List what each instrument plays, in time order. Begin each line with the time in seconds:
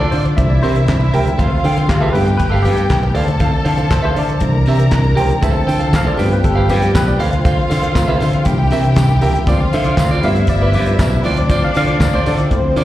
Already playing: tine electric piano F3 C4 E4 F4, string section D4 D5
0.00 clean electric guitar F4 C5 D5, tine electric piano A4
0.11 fingered electric bass D3, clean electric guitar F4 C5 D5, tine electric piano C5, open hi-hat, low conga
0.25 muted clean electric guitar stroke, closed hi-hat
0.36 fingered electric bass C2, tine electric piano E3 A#3 D4 E5, string section E4 E5, muted clean electric guitar stroke, kick, closed hi-hat
0.50 tine electric piano D5, muted clean electric guitar stroke
0.63 fingered electric bass C3, clean electric guitar G4 A#4 E5, tine electric piano C5, open hi-hat
0.76 muted clean electric guitar stroke, closed hi-hat
0.87 fingered electric bass C2, kick, snare, clap, closed hi-hat, muted conga
1.00 muted clean electric guitar stroke, low conga
1.13 fingered electric bass C#2, clean electric guitar G4 A#4 G5, tine electric piano A#4, open hi-hat
1.25 muted clean electric guitar stroke, closed hi-hat, high conga
1.38 fingered electric bass D2, tine electric piano F3 C4 F4, string section F4 F5, clean electric guitar A4 C5 F5, kick, closed hi-hat, muted conga
1.51 muted clean electric guitar stroke
1.64 fingered electric bass D3, clean electric guitar A4 C5 G5, open hi-hat, muted conga
1.77 clean electric guitar A4 C5 F5, closed hi-hat, high conga
1.88 fingered electric bass D2, tine electric piano G4, muted clean electric guitar stroke, kick, snare, clap, closed hi-hat
2.00 tine electric piano A4, clean electric guitar A4 C5 F5, high conga
2.13 fingered electric bass G2, tine electric piano A3 B3 F4 B4, clean electric guitar G4 B4 G5, string section G4 G5, open hi-hat, low conga
2.27 muted clean electric guitar stroke, closed hi-hat
2.37 fingered electric bass G1, tine electric piano B4, muted clean electric guitar stroke, kick, closed hi-hat
2.50 clean electric guitar G4 B4 F5, tine electric piano A4
2.62 fingered electric bass G2, tine electric piano G4, clean electric guitar G4 B4 F5, open hi-hat, muted conga
2.77 muted clean electric guitar stroke, closed hi-hat
2.89 fingered electric bass B1, kick, snare, clap, closed hi-hat, muted conga
3.03 muted clean electric guitar stroke, low conga
3.14 fingered electric bass D2, clean electric guitar A4 C5 F5, string section A4 A5, tine electric piano D5, open hi-hat, muted conga
3.28 muted clean electric guitar stroke, closed hi-hat, high conga
3.40 tine electric piano F3 C4 E4, clean electric guitar A4 C5 F5, kick, closed hi-hat
3.52 muted clean electric guitar stroke
3.64 fingered electric bass D3, clean electric guitar A4 C5 F5, open hi-hat
3.77 clean electric guitar A4 C5 F5, closed hi-hat, high conga
3.89 fingered electric bass D2, tine electric piano C5, muted clean electric guitar stroke, kick, snare, clap, closed hi-hat
4.02 clean electric guitar A4 C5 F5, tine electric piano C5, high conga
4.16 fingered electric bass D3, clean electric guitar A4 C5 F5, tine electric piano D5, open hi-hat, muted conga, low conga
4.29 muted clean electric guitar stroke, closed hi-hat
4.40 fingered electric bass C2, tine electric piano E3 A#3 D4, string section A#4 A#5, muted clean electric guitar stroke, kick, closed hi-hat, muted conga
4.55 muted clean electric guitar stroke
4.66 fingered electric bass C3, clean electric guitar G4 A#4 E5, open hi-hat, muted conga
4.79 muted clean electric guitar stroke, closed hi-hat
4.91 fingered electric bass C2, kick, snare, clap, closed hi-hat, muted conga
5.04 muted clean electric guitar stroke, low conga
5.15 fingered electric bass C#2, clean electric guitar G4 A#4 G5, open hi-hat
5.20 tine electric piano C5
5.29 muted clean electric guitar stroke, closed hi-hat, high conga
5.42 fingered electric bass D2, tonewheel organ D3 F3 C4, tine electric piano F3 C4 E4, clean electric guitar A4 C5 F5, string section A4 A5, kick, closed hi-hat, tambourine
5.54 muted clean electric guitar stroke
5.67 fingered electric bass D3, clean electric guitar A4 C5 G5, open hi-hat, tambourine, muted conga
5.80 clean electric guitar A4 C5 F5, closed hi-hat, high conga
5.93 fingered electric bass D2, tine electric piano F5, muted clean electric guitar stroke, kick, snare, clap, closed hi-hat, tambourine
6.04 clean electric guitar A4 C5 F5, tine electric piano D5, high conga
6.17 fingered electric bass G2, tonewheel organ G3 B4, tine electric piano A3 B3 F4, clean electric guitar G4 B4 G5, string section G4 G5, open hi-hat, tambourine, low conga
6.31 tine electric piano B4, muted clean electric guitar stroke, closed hi-hat
6.43 fingered electric bass G1, tine electric piano A4, muted clean electric guitar stroke, kick, closed hi-hat, muted conga
6.55 clean electric guitar G4 B4 F5
6.69 fingered electric bass G2, clean electric guitar G4 B4 F5, tine electric piano G4, open hi-hat, tambourine, muted conga
6.82 muted clean electric guitar stroke, closed hi-hat
6.94 fingered electric bass B1, tine electric piano B4, kick, snare, clap, closed hi-hat, tambourine, muted conga
7.07 tine electric piano D5, muted clean electric guitar stroke, low conga
7.18 fingered electric bass D2, tonewheel organ D3 C4, string section F4 F5, clean electric guitar A4 C5 F5, tine electric piano F5, open hi-hat, muted conga
7.32 muted clean electric guitar stroke, closed hi-hat, high conga
7.45 clean electric guitar A4 C5 F5, kick, closed hi-hat, tambourine
7.58 muted clean electric guitar stroke
7.70 fingered electric bass D3, clean electric guitar A4 C5 F5, open hi-hat, tambourine
7.82 clean electric guitar A4 C5 F5, closed hi-hat, high conga
7.95 fingered electric bass D2, tine electric piano F3 C4 F4, muted clean electric guitar stroke, kick, snare, clap, closed hi-hat, tambourine
8.08 clean electric guitar A4 C5 F5, high conga
8.20 fingered electric bass D3, clean electric guitar A4 C5 F5, open hi-hat, tambourine, low conga
8.33 muted clean electric guitar stroke, closed hi-hat
8.45 fingered electric bass C2, tonewheel organ C3 A#3 E4, tine electric piano E3 A#3 D4, string section G4 G5, muted clean electric guitar stroke, kick, closed hi-hat, tambourine, muted conga
8.58 muted clean electric guitar stroke
8.71 fingered electric bass C3, clean electric guitar G4 A#4 E5, open hi-hat, tambourine, muted conga
8.83 muted clean electric guitar stroke, closed hi-hat
8.95 fingered electric bass C2, kick, snare, clap, closed hi-hat, tambourine, muted conga
9.09 muted clean electric guitar stroke, low conga
9.21 fingered electric bass C#2, clean electric guitar G4 A#4 G5, tine electric piano E5, open hi-hat, tambourine, muted conga
9.33 muted clean electric guitar stroke, closed hi-hat, high conga
9.47 fingered electric bass D2, tonewheel organ D3 F3 C4, tine electric piano F3 C4 F4 D5, string section F4 F5, clean electric guitar F4 C5 D5, kick, closed hi-hat, tambourine, muted conga
9.61 muted clean electric guitar stroke
9.73 fingered electric bass D3, clean electric guitar F4 C5 E5, open hi-hat, tambourine
9.84 clean electric guitar F4 C5 D5, closed hi-hat, high conga
9.97 fingered electric bass D2, muted clean electric guitar stroke, kick, snare, clap, closed hi-hat, tambourine
10.09 clean electric guitar F4 C5 D5, high conga
10.21 fingered electric bass G2, tonewheel organ G3 B4, tine electric piano A3 B3 F4 F5, string section E4 E5, clean electric guitar F4 B4 E5, open hi-hat, tambourine, muted conga, low conga
10.35 muted clean electric guitar stroke, closed hi-hat
10.47 fingered electric bass G1, tine electric piano D5, muted clean electric guitar stroke, kick, closed hi-hat, tambourine
10.62 clean electric guitar F4 B4 D5, tine electric piano B4
10.73 fingered electric bass G2, clean electric guitar F4 B4 D5, open hi-hat, tambourine
10.86 muted clean electric guitar stroke, closed hi-hat
10.99 fingered electric bass B1, kick, snare, clap, closed hi-hat, tambourine
11.12 muted clean electric guitar stroke, low conga
11.23 fingered electric bass D2, tonewheel organ D3 C4, tine electric piano F3 C4 E4, string section D4 D5, clean electric guitar F4 C5 D5, open hi-hat, tambourine, muted conga
11.36 muted clean electric guitar stroke, closed hi-hat, high conga
11.50 clean electric guitar F4 C5 D5, tine electric piano D5, kick, closed hi-hat, tambourine
11.63 tine electric piano F5, muted clean electric guitar stroke
11.74 fingered electric bass D3, clean electric guitar F4 C5 D5, tine electric piano F5, open hi-hat, tambourine, muted conga
11.87 clean electric guitar F4 C5 D5, closed hi-hat, high conga
12.00 fingered electric bass D2, tine electric piano D5, muted clean electric guitar stroke, kick, snare, clap, closed hi-hat, tambourine, muted conga
12.14 clean electric guitar F4 C5 D5, tine electric piano C5, high conga
12.26 fingered electric bass D3, clean electric guitar F4 C5 D5, tine electric piano A4, open hi-hat, tambourine, low conga
12.38 muted clean electric guitar stroke, closed hi-hat
12.51 fingered electric bass D2, tine electric piano F3 C4 E4, tonewheel organ C4, string section C4 C5, muted clean electric guitar stroke, kick, closed hi-hat, muted conga
12.64 muted clean electric guitar stroke
12.76 fingered electric bass D3, clean electric guitar F4 C5 D5, open hi-hat, tambourine, muted conga